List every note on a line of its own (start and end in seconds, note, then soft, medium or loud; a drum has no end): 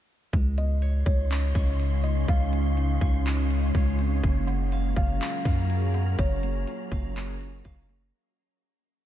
0.33 1.03 C#2 loud
0.33 4.20 C#3 medium
0.33 1.79 G#3 medium
0.33 4.20 G#3 medium
0.33 4.20 C#4 medium
0.33 4.20 D#4 medium
0.33 4.20 F4 medium
0.33 4.20 C#5 medium
0.33 4.20 C6 medium
0.33 kick loud
0.33 closed hi-hat medium
0.58 1.04 D#5 medium
0.58 closed hi-hat medium
0.82 2.28 C#5 medium
0.82 closed hi-hat medium
1.06 1.53 C#2 loud
1.06 2.00 C#5 medium
1.06 kick loud
1.06 closed hi-hat medium
1.30 2.76 C#4 medium
1.30 clap loud
1.30 closed hi-hat medium
1.55 2.25 C#2 loud
1.55 3.00 C#6 medium
1.55 kick medium
1.55 closed hi-hat medium
1.80 closed hi-hat medium
2.03 2.27 D#5 medium
2.03 closed hi-hat medium
2.28 2.99 C#2 loud
2.28 3.71 F5 loud
2.28 kick loud
2.28 closed hi-hat medium
2.53 3.99 G#3 medium
2.53 closed hi-hat medium
2.77 3.49 C#4 medium
2.77 closed hi-hat medium
3.01 3.72 C#2 loud
3.01 4.23 C#6 medium
3.01 kick loud
3.01 open hi-hat soft
3.26 clap loud
3.26 closed hi-hat medium
3.51 4.24 C#4 medium
3.51 closed hi-hat medium
3.75 4.22 C#2 loud
3.75 4.24 C#5 medium
3.75 kick medium
3.75 closed hi-hat medium
3.99 4.23 C4 medium
3.99 closed hi-hat medium
4.23 4.94 F#1 loud
4.23 8.10 F#3 medium
4.23 5.70 A#3 loud
4.23 8.10 C#4 medium
4.23 8.10 F#4 medium
4.23 8.10 G#4 medium
4.23 8.10 A#4 medium
4.23 8.10 A#5 medium
4.23 6.17 F6 medium
4.23 kick loud
4.23 closed hi-hat medium
4.47 4.93 F#5 medium
4.47 closed hi-hat medium
4.72 5.45 F5 medium
4.72 closed hi-hat medium
4.96 5.20 F#1 loud
4.96 5.90 F5 medium
4.96 kick loud
4.96 closed hi-hat medium
5.21 6.66 F4 medium
5.21 clap loud
5.21 closed hi-hat medium
5.45 6.16 F#2 loud
5.45 6.91 F5 medium
5.45 kick medium
5.45 closed hi-hat medium
5.70 closed hi-hat medium
5.94 6.18 F#5 medium
5.94 closed hi-hat medium
6.19 6.65 F#1 loud
6.19 8.10 C#5 medium
6.19 8.12 D#5 medium
6.19 kick loud
6.19 closed hi-hat medium
6.43 7.15 A#3 medium
6.43 closed hi-hat medium
6.67 7.39 F4 medium
6.67 closed hi-hat medium
6.92 7.62 F#1 loud
6.92 7.63 F5 medium
6.92 kick loud
6.92 open hi-hat soft
7.16 7.88 A#3 medium
7.16 clap loud
7.16 closed hi-hat medium
7.40 8.14 F4 medium
7.40 closed hi-hat medium
7.65 8.12 F#1 loud
7.65 8.14 F5 medium
7.65 kick medium
7.65 closed hi-hat medium
7.89 8.14 A#3 medium
7.89 closed hi-hat medium